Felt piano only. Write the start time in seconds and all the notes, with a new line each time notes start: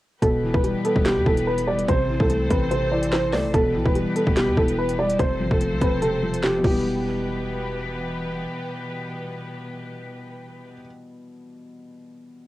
0.23 B2
0.43 E3
0.64 G3
0.85 B3
1.06 B2
1.26 E3
1.68 G3
1.88 C3
2.09 E3
2.30 A3
2.50 C4
2.71 C3
2.92 E3
3.33 A3
3.54 B2
3.74 E3
3.95 G3
4.16 B3
4.37 B2
4.57 E3
4.99 G3
5.19 C3
5.40 F3
5.61 A3
5.81 C4
6.02 C3
6.23 F3
6.58 B2 E3
6.66 G3
6.70 B3